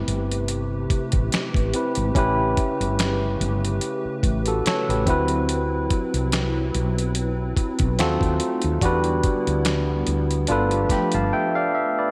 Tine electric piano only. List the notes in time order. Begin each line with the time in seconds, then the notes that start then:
Already playing: C4 E4 G4 B4
1.74 C4 E4 G4 B4
2.15 C#4 E4 G4 B4
4.48 F#4 A4
4.67 A4 C#5
4.90 G4 B4
5.06 C4 E4 F#4 B4
7.99 C4 F4 F#4 A4
8.81 D4 F#4 G4 B4
10.48 D4 F4 A4 B4
10.91 G5 B5
11.14 F5 A5
11.33 E5 G5
11.55 D5 F5
11.75 E5
11.99 B4 D5